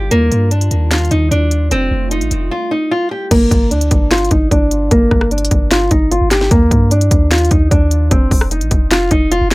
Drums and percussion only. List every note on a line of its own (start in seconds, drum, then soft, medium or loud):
0.11 closed hi-hat medium
0.32 closed hi-hat medium
0.51 closed hi-hat medium
0.61 closed hi-hat medium
0.71 closed hi-hat medium
0.91 snare loud
0.91 clap medium
0.91 closed hi-hat medium
0.98 closed hi-hat medium
1.05 closed hi-hat soft
1.11 closed hi-hat medium
1.32 closed hi-hat medium
1.51 closed hi-hat medium
1.71 closed hi-hat medium
2.11 closed hi-hat medium
2.21 closed hi-hat soft
2.31 closed hi-hat medium
3.31 kick loud
3.31 closed hi-hat medium
3.31 crash medium
3.51 kick loud
3.51 closed hi-hat medium
3.71 closed hi-hat medium
3.81 closed hi-hat medium
3.91 kick medium
3.91 closed hi-hat medium
4.11 snare loud
4.11 clap medium
4.11 closed hi-hat medium
4.18 closed hi-hat medium
4.25 closed hi-hat soft
4.31 kick medium
4.31 closed hi-hat medium
4.51 kick loud
4.51 closed hi-hat medium
4.71 closed hi-hat medium
4.91 kick loud
4.91 closed hi-hat medium
5.11 kick loud
5.11 cross-stick medium
5.21 cross-stick loud
5.31 closed hi-hat soft
5.38 closed hi-hat medium
5.45 closed hi-hat medium
5.51 kick medium
5.51 closed hi-hat medium
5.71 snare loud
5.71 clap medium
5.71 closed hi-hat medium
5.91 kick loud
5.91 closed hi-hat medium
6.12 closed hi-hat medium
6.31 snare medium
6.31 clap medium
6.31 closed hi-hat medium
6.41 snare medium
6.51 kick loud
6.51 closed hi-hat medium
6.71 kick loud
6.71 closed hi-hat medium
6.91 closed hi-hat medium
7.01 closed hi-hat medium
7.11 kick medium
7.11 closed hi-hat medium
7.31 snare loud
7.31 clap medium
7.31 closed hi-hat medium
7.38 closed hi-hat medium
7.45 closed hi-hat soft
7.51 kick loud
7.51 closed hi-hat medium
7.71 kick loud
7.71 closed hi-hat medium
7.91 closed hi-hat medium
8.11 kick loud
8.11 closed hi-hat medium
8.31 kick loud
8.31 open hi-hat medium
8.41 cross-stick loud
8.51 closed hi-hat medium
8.61 closed hi-hat soft
8.71 kick medium
8.71 closed hi-hat medium
8.91 snare loud
8.91 clap medium
8.91 closed hi-hat medium
9.11 kick loud
9.11 closed hi-hat medium
9.32 closed hi-hat medium
9.51 snare loud
9.51 closed hi-hat medium